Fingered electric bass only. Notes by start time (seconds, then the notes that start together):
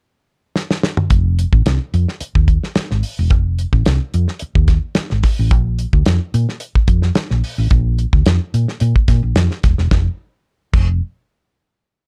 1.10 F1
1.53 A1
1.66 C2
1.94 F2
2.21 muted fingered electric bass stroke
2.35 D#2
2.76 muted fingered electric bass stroke
2.92 G#1
3.19 E1
3.31 F1
3.73 A1
3.87 C2
4.14 F2
4.42 muted fingered electric bass stroke
4.55 D#2
4.97 muted fingered electric bass stroke
5.12 G#1
5.39 A1
5.51 A#1
5.93 D2
6.07 F2
6.34 A#2
6.75 muted fingered electric bass stroke
6.88 F2
7.16 muted fingered electric bass stroke
7.31 A#1
7.58 A1
7.71 A#1
8.13 D2
8.26 F2
8.54 A#2
8.81 A#2
9.08 A#2
9.23 A#1
9.36 F2
9.64 D#1
9.78 E1
9.91 F1
10.74 F1